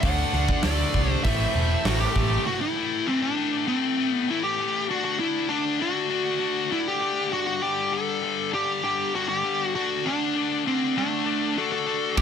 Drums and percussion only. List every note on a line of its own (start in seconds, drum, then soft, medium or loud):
0.03 kick loud
0.03 open hi-hat medium
0.33 snare soft
0.49 kick medium
0.63 snare loud
0.63 open hi-hat medium
0.94 kick medium
1.24 kick loud
1.24 open hi-hat medium
1.85 snare loud
1.85 open hi-hat medium
2.16 kick medium
12.17 kick loud
12.17 crash loud